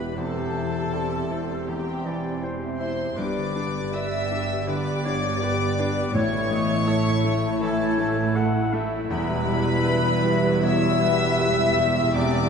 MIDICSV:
0, 0, Header, 1, 12, 480
1, 0, Start_track
1, 0, Tempo, 753769
1, 109, Time_signature, 4, 2, 24, 8
1, 2508, Tempo, 738007
1, 6348, Tempo, 769231
1, 8001, End_track
2, 0, Start_track
2, 0, Title_t, "Violin section"
2, 0, Program_c, 0, 48
2, 0, Note_on_c, 0, 83, 87
2, 108, Note_on_c, 0, 81, 89
2, 110, Note_off_c, 0, 83, 0
2, 1074, Note_off_c, 0, 81, 0
2, 1074, Note_on_c, 0, 79, 78
2, 1536, Note_off_c, 0, 79, 0
2, 1773, Note_on_c, 0, 84, 83
2, 2001, Note_off_c, 0, 84, 0
2, 2023, Note_on_c, 0, 86, 97
2, 2506, Note_on_c, 0, 88, 107
2, 2509, Note_off_c, 0, 86, 0
2, 2991, Note_off_c, 0, 88, 0
2, 2997, Note_on_c, 0, 86, 112
2, 3947, Note_on_c, 0, 85, 122
2, 3948, Note_off_c, 0, 86, 0
2, 4895, Note_off_c, 0, 85, 0
2, 4906, Note_on_c, 0, 81, 102
2, 5379, Note_off_c, 0, 81, 0
2, 5879, Note_on_c, 0, 83, 127
2, 6824, Note_off_c, 0, 83, 0
2, 6846, Note_on_c, 0, 88, 127
2, 7792, Note_on_c, 0, 86, 127
2, 7795, Note_off_c, 0, 88, 0
2, 8001, Note_off_c, 0, 86, 0
2, 8001, End_track
3, 0, Start_track
3, 0, Title_t, "Clarinet"
3, 0, Program_c, 1, 71
3, 0, Note_on_c, 1, 71, 67
3, 82, Note_off_c, 1, 71, 0
3, 106, Note_on_c, 1, 72, 69
3, 589, Note_on_c, 1, 74, 62
3, 599, Note_off_c, 1, 72, 0
3, 832, Note_on_c, 1, 72, 68
3, 842, Note_off_c, 1, 74, 0
3, 1073, Note_on_c, 1, 76, 64
3, 1082, Note_off_c, 1, 72, 0
3, 1310, Note_on_c, 1, 74, 67
3, 1320, Note_off_c, 1, 76, 0
3, 1547, Note_on_c, 1, 72, 74
3, 1556, Note_off_c, 1, 74, 0
3, 2013, Note_off_c, 1, 72, 0
3, 2017, Note_on_c, 1, 71, 76
3, 2497, Note_off_c, 1, 71, 0
3, 2508, Note_on_c, 1, 74, 68
3, 2987, Note_on_c, 1, 71, 77
3, 2997, Note_off_c, 1, 74, 0
3, 3229, Note_on_c, 1, 73, 75
3, 3238, Note_off_c, 1, 71, 0
3, 3470, Note_on_c, 1, 74, 81
3, 3480, Note_off_c, 1, 73, 0
3, 3713, Note_on_c, 1, 71, 73
3, 3723, Note_off_c, 1, 74, 0
3, 3940, Note_off_c, 1, 71, 0
3, 3944, Note_on_c, 1, 73, 88
3, 4178, Note_on_c, 1, 75, 93
3, 4188, Note_off_c, 1, 73, 0
3, 4420, Note_on_c, 1, 76, 87
3, 4430, Note_off_c, 1, 75, 0
3, 4727, Note_off_c, 1, 76, 0
3, 4893, Note_on_c, 1, 73, 91
3, 5384, Note_on_c, 1, 78, 106
3, 5393, Note_off_c, 1, 73, 0
3, 5628, Note_on_c, 1, 76, 95
3, 5638, Note_off_c, 1, 78, 0
3, 6842, Note_on_c, 1, 73, 92
3, 6851, Note_off_c, 1, 76, 0
3, 7077, Note_on_c, 1, 71, 74
3, 7086, Note_off_c, 1, 73, 0
3, 7310, Note_off_c, 1, 71, 0
3, 7314, Note_on_c, 1, 76, 111
3, 8001, Note_off_c, 1, 76, 0
3, 8001, End_track
4, 0, Start_track
4, 0, Title_t, "Flute section"
4, 0, Program_c, 2, 73
4, 0, Note_on_c, 2, 71, 72
4, 105, Note_on_c, 2, 69, 74
4, 106, Note_off_c, 2, 71, 0
4, 1052, Note_off_c, 2, 69, 0
4, 1080, Note_on_c, 2, 67, 68
4, 1548, Note_off_c, 2, 67, 0
4, 1773, Note_on_c, 2, 72, 72
4, 2001, Note_off_c, 2, 72, 0
4, 2018, Note_on_c, 2, 74, 78
4, 2502, Note_on_c, 2, 76, 89
4, 2507, Note_off_c, 2, 74, 0
4, 2986, Note_on_c, 2, 74, 92
4, 2989, Note_off_c, 2, 76, 0
4, 3938, Note_on_c, 2, 73, 97
4, 3942, Note_off_c, 2, 74, 0
4, 4891, Note_off_c, 2, 73, 0
4, 4893, Note_on_c, 2, 69, 86
4, 5372, Note_off_c, 2, 69, 0
4, 5860, Note_on_c, 2, 71, 116
4, 6815, Note_off_c, 2, 71, 0
4, 6837, Note_on_c, 2, 76, 122
4, 7784, Note_on_c, 2, 74, 112
4, 7790, Note_off_c, 2, 76, 0
4, 8001, Note_off_c, 2, 74, 0
4, 8001, End_track
5, 0, Start_track
5, 0, Title_t, "Violin section"
5, 0, Program_c, 3, 48
5, 0, Note_on_c, 3, 71, 82
5, 106, Note_off_c, 3, 71, 0
5, 108, Note_on_c, 3, 69, 80
5, 1073, Note_off_c, 3, 69, 0
5, 1074, Note_on_c, 3, 67, 66
5, 1545, Note_off_c, 3, 67, 0
5, 1780, Note_on_c, 3, 72, 72
5, 2005, Note_off_c, 3, 72, 0
5, 2020, Note_on_c, 3, 74, 82
5, 2498, Note_off_c, 3, 74, 0
5, 2517, Note_on_c, 3, 76, 96
5, 2996, Note_off_c, 3, 76, 0
5, 3001, Note_on_c, 3, 74, 101
5, 3946, Note_on_c, 3, 73, 111
5, 3950, Note_off_c, 3, 74, 0
5, 4876, Note_off_c, 3, 73, 0
5, 4900, Note_on_c, 3, 69, 84
5, 5385, Note_off_c, 3, 69, 0
5, 5877, Note_on_c, 3, 71, 108
5, 6823, Note_off_c, 3, 71, 0
5, 6849, Note_on_c, 3, 76, 111
5, 7786, Note_on_c, 3, 74, 120
5, 7796, Note_off_c, 3, 76, 0
5, 8001, Note_off_c, 3, 74, 0
5, 8001, End_track
6, 0, Start_track
6, 0, Title_t, "Harp"
6, 0, Program_c, 4, 46
6, 0, Note_on_c, 4, 40, 55
6, 0, Note_on_c, 4, 47, 45
6, 0, Note_on_c, 4, 64, 42
6, 0, Note_on_c, 4, 67, 41
6, 0, Note_on_c, 4, 71, 47
6, 0, Note_on_c, 4, 76, 53
6, 0, Note_on_c, 4, 79, 47
6, 0, Note_on_c, 4, 83, 48
6, 101, Note_off_c, 4, 40, 0
6, 109, Note_on_c, 4, 40, 59
6, 126, Note_off_c, 4, 71, 0
6, 126, Note_off_c, 4, 83, 0
6, 128, Note_off_c, 4, 47, 0
6, 228, Note_on_c, 4, 52, 47
6, 337, Note_off_c, 4, 64, 0
6, 345, Note_on_c, 4, 64, 49
6, 463, Note_off_c, 4, 67, 0
6, 471, Note_on_c, 4, 67, 49
6, 588, Note_on_c, 4, 72, 53
6, 703, Note_off_c, 4, 76, 0
6, 710, Note_on_c, 4, 76, 53
6, 825, Note_off_c, 4, 79, 0
6, 833, Note_on_c, 4, 79, 57
6, 951, Note_on_c, 4, 84, 57
6, 1064, Note_off_c, 4, 79, 0
6, 1071, Note_on_c, 4, 79, 61
6, 1183, Note_off_c, 4, 84, 0
6, 1191, Note_on_c, 4, 84, 51
6, 1300, Note_off_c, 4, 79, 0
6, 1308, Note_on_c, 4, 79, 53
6, 1420, Note_off_c, 4, 84, 0
6, 1428, Note_on_c, 4, 84, 53
6, 1539, Note_off_c, 4, 79, 0
6, 1547, Note_on_c, 4, 79, 56
6, 1656, Note_off_c, 4, 76, 0
6, 1664, Note_on_c, 4, 76, 54
6, 1776, Note_off_c, 4, 72, 0
6, 1783, Note_on_c, 4, 72, 55
6, 1898, Note_off_c, 4, 67, 0
6, 1906, Note_on_c, 4, 67, 51
6, 2024, Note_on_c, 4, 43, 73
6, 2039, Note_off_c, 4, 64, 0
6, 2041, Note_off_c, 4, 40, 0
6, 2041, Note_off_c, 4, 52, 0
6, 2042, Note_off_c, 4, 72, 0
6, 2042, Note_off_c, 4, 76, 0
6, 2042, Note_off_c, 4, 84, 0
6, 2148, Note_on_c, 4, 50, 55
6, 2268, Note_on_c, 4, 62, 56
6, 2387, Note_off_c, 4, 67, 0
6, 2394, Note_on_c, 4, 67, 60
6, 2513, Note_on_c, 4, 71, 62
6, 2749, Note_off_c, 4, 79, 0
6, 2878, Note_on_c, 4, 83, 65
6, 2995, Note_on_c, 4, 79, 75
6, 3108, Note_off_c, 4, 83, 0
6, 3230, Note_off_c, 4, 79, 0
6, 3238, Note_on_c, 4, 79, 63
6, 3360, Note_on_c, 4, 83, 67
6, 3471, Note_off_c, 4, 79, 0
6, 3479, Note_on_c, 4, 79, 64
6, 3598, Note_on_c, 4, 74, 67
6, 3709, Note_off_c, 4, 71, 0
6, 3717, Note_on_c, 4, 71, 67
6, 3828, Note_off_c, 4, 67, 0
6, 3836, Note_on_c, 4, 67, 60
6, 3950, Note_on_c, 4, 45, 83
6, 3965, Note_off_c, 4, 43, 0
6, 3965, Note_off_c, 4, 62, 0
6, 3966, Note_off_c, 4, 50, 0
6, 3966, Note_off_c, 4, 74, 0
6, 3966, Note_off_c, 4, 79, 0
6, 3966, Note_off_c, 4, 83, 0
6, 3967, Note_off_c, 4, 71, 0
6, 3968, Note_off_c, 4, 67, 0
6, 4066, Note_on_c, 4, 52, 60
6, 4186, Note_on_c, 4, 57, 60
6, 4307, Note_on_c, 4, 64, 63
6, 4424, Note_on_c, 4, 69, 70
6, 4535, Note_off_c, 4, 64, 0
6, 4543, Note_on_c, 4, 64, 69
6, 4661, Note_on_c, 4, 76, 69
6, 4777, Note_on_c, 4, 81, 67
6, 4891, Note_off_c, 4, 76, 0
6, 4899, Note_on_c, 4, 76, 79
6, 5013, Note_off_c, 4, 81, 0
6, 5021, Note_on_c, 4, 81, 62
6, 5135, Note_off_c, 4, 76, 0
6, 5143, Note_on_c, 4, 76, 74
6, 5260, Note_off_c, 4, 81, 0
6, 5267, Note_on_c, 4, 81, 68
6, 5382, Note_off_c, 4, 76, 0
6, 5390, Note_on_c, 4, 76, 70
6, 5503, Note_off_c, 4, 69, 0
6, 5511, Note_on_c, 4, 69, 74
6, 5627, Note_off_c, 4, 64, 0
6, 5635, Note_on_c, 4, 64, 71
6, 5748, Note_off_c, 4, 57, 0
6, 5756, Note_on_c, 4, 57, 69
6, 5874, Note_on_c, 4, 40, 87
6, 5888, Note_off_c, 4, 52, 0
6, 5890, Note_off_c, 4, 45, 0
6, 5890, Note_off_c, 4, 69, 0
6, 5891, Note_off_c, 4, 57, 0
6, 5891, Note_off_c, 4, 81, 0
6, 5992, Note_on_c, 4, 47, 64
6, 6109, Note_on_c, 4, 55, 67
6, 6218, Note_off_c, 4, 64, 0
6, 6226, Note_on_c, 4, 64, 67
6, 6469, Note_on_c, 4, 67, 77
6, 6586, Note_off_c, 4, 76, 0
6, 6594, Note_on_c, 4, 76, 73
6, 6719, Note_on_c, 4, 83, 76
6, 6837, Note_off_c, 4, 76, 0
6, 6844, Note_on_c, 4, 76, 79
6, 6958, Note_off_c, 4, 83, 0
6, 6965, Note_on_c, 4, 83, 66
6, 7078, Note_off_c, 4, 76, 0
6, 7086, Note_on_c, 4, 76, 74
6, 7191, Note_off_c, 4, 83, 0
6, 7199, Note_on_c, 4, 83, 69
6, 7312, Note_off_c, 4, 76, 0
6, 7320, Note_on_c, 4, 76, 73
6, 7432, Note_off_c, 4, 67, 0
6, 7439, Note_on_c, 4, 67, 76
6, 7668, Note_off_c, 4, 64, 0
6, 7676, Note_on_c, 4, 64, 67
6, 7787, Note_off_c, 4, 40, 0
6, 7795, Note_on_c, 4, 40, 80
6, 7811, Note_off_c, 4, 83, 0
6, 7815, Note_off_c, 4, 47, 0
6, 7911, Note_on_c, 4, 52, 65
6, 8001, Note_off_c, 4, 40, 0
6, 8001, Note_off_c, 4, 52, 0
6, 8001, Note_off_c, 4, 55, 0
6, 8001, Note_off_c, 4, 64, 0
6, 8001, Note_off_c, 4, 67, 0
6, 8001, Note_off_c, 4, 76, 0
6, 8001, End_track
7, 0, Start_track
7, 0, Title_t, "French horn section"
7, 0, Program_c, 5, 60
7, 0, Note_on_c, 5, 59, 59
7, 0, Note_on_c, 5, 67, 56
7, 83, Note_off_c, 5, 59, 0
7, 111, Note_on_c, 5, 60, 68
7, 1916, Note_off_c, 5, 60, 0
7, 1916, Note_off_c, 5, 67, 0
7, 2024, Note_on_c, 5, 59, 71
7, 2025, Note_on_c, 5, 67, 77
7, 3920, Note_off_c, 5, 59, 0
7, 3921, Note_off_c, 5, 67, 0
7, 3944, Note_on_c, 5, 57, 94
7, 3946, Note_on_c, 5, 64, 91
7, 5754, Note_off_c, 5, 57, 0
7, 5754, Note_off_c, 5, 64, 0
7, 5865, Note_on_c, 5, 67, 93
7, 5872, Note_on_c, 5, 59, 92
7, 7771, Note_off_c, 5, 59, 0
7, 7790, Note_on_c, 5, 60, 90
7, 8001, Note_off_c, 5, 60, 0
7, 8001, Note_off_c, 5, 67, 0
7, 8001, End_track
8, 0, Start_track
8, 0, Title_t, "Viola section"
8, 0, Program_c, 6, 48
8, 0, Note_on_c, 6, 59, 57
8, 0, Note_on_c, 6, 67, 56
8, 82, Note_off_c, 6, 59, 0
8, 104, Note_on_c, 6, 60, 61
8, 1994, Note_off_c, 6, 60, 0
8, 1995, Note_off_c, 6, 67, 0
8, 2018, Note_on_c, 6, 67, 72
8, 2020, Note_on_c, 6, 59, 72
8, 3917, Note_off_c, 6, 67, 0
8, 3944, Note_on_c, 6, 64, 84
8, 4392, Note_off_c, 6, 59, 0
8, 4415, Note_on_c, 6, 57, 87
8, 5866, Note_off_c, 6, 57, 0
8, 5872, Note_on_c, 6, 55, 95
8, 7768, Note_off_c, 6, 64, 0
8, 7791, Note_on_c, 6, 60, 85
8, 8001, Note_off_c, 6, 55, 0
8, 8001, Note_off_c, 6, 60, 0
8, 8001, End_track
9, 0, Start_track
9, 0, Title_t, "Grand piano"
9, 0, Program_c, 7, 0
9, 0, Control_c, 7, 64, 127
9, 0, Note_on_c, 7, 47, 45
9, 0, Note_on_c, 7, 64, 46
9, 0, Note_on_c, 7, 71, 46
9, 110, Note_off_c, 7, 64, 0
9, 110, Note_on_c, 7, 40, 52
9, 120, Control_c, 7, 64, 0
9, 121, Note_off_c, 7, 47, 0
9, 122, Note_off_c, 7, 71, 0
9, 212, Control_c, 7, 64, 127
9, 350, Note_on_c, 7, 64, 48
9, 596, Note_on_c, 7, 72, 45
9, 737, Note_off_c, 7, 64, 0
9, 832, Note_on_c, 7, 64, 43
9, 979, Note_off_c, 7, 72, 0
9, 1049, Note_off_c, 7, 40, 0
9, 1070, Note_on_c, 7, 40, 53
9, 1215, Note_off_c, 7, 64, 0
9, 1307, Note_on_c, 7, 52, 53
9, 1549, Note_on_c, 7, 72, 51
9, 1685, Note_off_c, 7, 52, 0
9, 1780, Note_on_c, 7, 64, 55
9, 1927, Note_off_c, 7, 72, 0
9, 1995, Note_off_c, 7, 40, 0
9, 2022, Note_off_c, 7, 64, 0
9, 2023, Note_on_c, 7, 43, 62
9, 2034, Control_c, 7, 64, 0
9, 2137, Control_c, 7, 64, 127
9, 2266, Note_on_c, 7, 62, 58
9, 2507, Note_on_c, 7, 71, 52
9, 2655, Note_off_c, 7, 62, 0
9, 2752, Note_on_c, 7, 62, 50
9, 2895, Note_off_c, 7, 71, 0
9, 2967, Note_off_c, 7, 43, 0
9, 2992, Note_on_c, 7, 50, 54
9, 3137, Note_off_c, 7, 62, 0
9, 3235, Note_on_c, 7, 62, 60
9, 3379, Note_off_c, 7, 50, 0
9, 3474, Note_on_c, 7, 71, 64
9, 3619, Note_off_c, 7, 62, 0
9, 3716, Note_on_c, 7, 62, 66
9, 3851, Note_off_c, 7, 71, 0
9, 3943, Note_on_c, 7, 45, 78
9, 3948, Note_off_c, 7, 62, 0
9, 3958, Control_c, 7, 64, 0
9, 4070, Control_c, 7, 64, 127
9, 4179, Note_on_c, 7, 57, 63
9, 4418, Note_on_c, 7, 69, 64
9, 4560, Note_off_c, 7, 57, 0
9, 4659, Note_on_c, 7, 57, 63
9, 4798, Note_off_c, 7, 69, 0
9, 4867, Note_off_c, 7, 45, 0
9, 4901, Note_on_c, 7, 52, 63
9, 5041, Note_off_c, 7, 57, 0
9, 5136, Note_on_c, 7, 57, 67
9, 5288, Note_off_c, 7, 52, 0
9, 5384, Note_on_c, 7, 69, 68
9, 5528, Note_off_c, 7, 57, 0
9, 5625, Note_on_c, 7, 57, 70
9, 5773, Note_off_c, 7, 69, 0
9, 5867, Note_off_c, 7, 57, 0
9, 5867, Note_on_c, 7, 40, 79
9, 5879, Control_c, 7, 64, 0
9, 5965, Control_c, 7, 64, 127
9, 6106, Note_on_c, 7, 55, 69
9, 6349, Note_on_c, 7, 71, 66
9, 6493, Note_off_c, 7, 55, 0
9, 6591, Note_on_c, 7, 55, 63
9, 6745, Note_off_c, 7, 71, 0
9, 6818, Note_off_c, 7, 40, 0
9, 6844, Note_on_c, 7, 47, 60
9, 6987, Note_off_c, 7, 55, 0
9, 7079, Note_on_c, 7, 55, 69
9, 7225, Note_off_c, 7, 47, 0
9, 7315, Note_on_c, 7, 71, 70
9, 7460, Note_off_c, 7, 55, 0
9, 7554, Note_on_c, 7, 55, 68
9, 7697, Note_off_c, 7, 71, 0
9, 7784, Note_on_c, 7, 40, 82
9, 7792, Note_off_c, 7, 55, 0
9, 7807, Control_c, 7, 64, 0
9, 7921, Control_c, 7, 64, 127
9, 8001, Note_off_c, 7, 40, 0
9, 8001, End_track
10, 0, Start_track
10, 0, Title_t, "Timpani"
10, 0, Program_c, 8, 47
10, 3944, Note_on_c, 8, 45, 86
10, 4629, Note_off_c, 8, 45, 0
10, 8001, End_track
11, 0, Start_track
11, 0, Title_t, "Cello section"
11, 0, Program_c, 10, 48
11, 0, Note_on_c, 10, 40, 58
11, 1997, Note_off_c, 10, 40, 0
11, 2021, Note_on_c, 10, 43, 78
11, 3919, Note_off_c, 10, 43, 0
11, 3942, Note_on_c, 10, 45, 82
11, 5840, Note_off_c, 10, 45, 0
11, 5870, Note_on_c, 10, 40, 91
11, 8001, Note_off_c, 10, 40, 0
11, 8001, End_track
12, 0, Start_track
12, 0, Title_t, "Double bass section"
12, 0, Program_c, 11, 48
12, 0, Note_on_c, 11, 28, 56
12, 1996, Note_off_c, 11, 28, 0
12, 2020, Note_on_c, 11, 31, 77
12, 3918, Note_off_c, 11, 31, 0
12, 3948, Note_on_c, 11, 33, 85
12, 5843, Note_off_c, 11, 33, 0
12, 5868, Note_on_c, 11, 28, 96
12, 8001, Note_off_c, 11, 28, 0
12, 8001, End_track
0, 0, End_of_file